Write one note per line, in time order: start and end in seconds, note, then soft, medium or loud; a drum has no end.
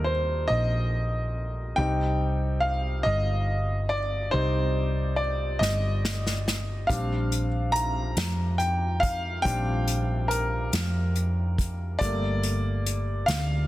0.00 0.46 D#2 medium
0.00 1.74 G3 soft
0.00 1.74 A#3 soft
0.00 1.74 D#4 soft
0.00 1.80 A4 medium
0.00 1.80 A#4 medium
0.00 0.04 C5 medium
0.04 0.45 C5 medium
0.48 1.74 A#1 medium
0.48 1.73 D#5 medium
1.76 3.02 C2 medium
1.76 3.02 G3 soft
1.76 3.02 C4 soft
1.76 3.02 D#4 medium
1.76 2.58 G5 medium
2.60 2.70 F5 medium
3.03 4.30 G1 medium
3.03 3.92 D#5 medium
3.89 3.99 D5 medium
4.31 5.58 C2 medium
4.31 6.85 G3 soft
4.31 6.86 C4 soft
4.31 6.86 D#4 medium
4.31 5.20 C5 medium
5.16 5.62 D5 medium
5.59 6.85 G1 medium
5.59 6.92 D#5 medium
5.59 snare soft
6.05 snare medium
6.27 snare medium
6.48 snare medium
6.87 8.14 A#1 loud
6.87 7.46 G3 soft
6.87 7.46 C4 soft
6.87 7.47 D4 soft
6.87 7.70 F5 medium
6.87 kick loud
6.87 closed hi-hat medium
7.32 closed hi-hat medium
7.72 8.61 A#5 loud
7.72 closed hi-hat medium
8.17 9.41 F2 medium
8.17 snare loud
8.17 closed hi-hat medium
8.58 9.03 G5 medium
8.58 closed hi-hat soft
9.00 9.45 F5 medium
9.00 kick medium
9.00 closed hi-hat medium
9.42 10.69 A#1 loud
9.42 10.68 G3 soft
9.42 10.69 C4 soft
9.42 10.69 D4 soft
9.42 10.32 G5 loud
9.42 kick loud
9.42 closed hi-hat medium
9.88 closed hi-hat medium
10.28 12.05 A#4 medium
10.28 closed hi-hat medium
10.73 11.97 F2 medium
10.73 snare loud
10.73 closed hi-hat medium
11.16 closed hi-hat soft
11.58 kick medium
11.58 closed hi-hat medium
11.99 13.25 G1 loud
11.99 13.24 G3 soft
11.99 13.25 A3 soft
11.99 13.25 A#3 medium
11.99 13.31 D5 medium
11.99 kick medium
11.99 closed hi-hat medium
12.43 closed hi-hat medium
12.86 closed hi-hat medium
13.26 13.67 D2 medium
13.26 13.67 F5 medium
13.26 snare loud
13.26 closed hi-hat medium